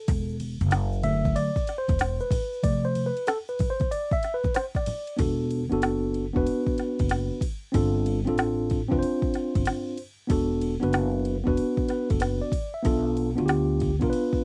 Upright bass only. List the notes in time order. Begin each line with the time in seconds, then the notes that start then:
0.09 E1
0.61 F#1
1.89 E1
5.19 E1
5.72 F#1
6.36 E1
7.00 F#1
7.74 G1
8.28 A1
8.92 F1
9.56 G1
10.30 E1
10.83 F#1
11.47 E1
12.11 F#1
12.85 B1
13.38 D2
14.02 B1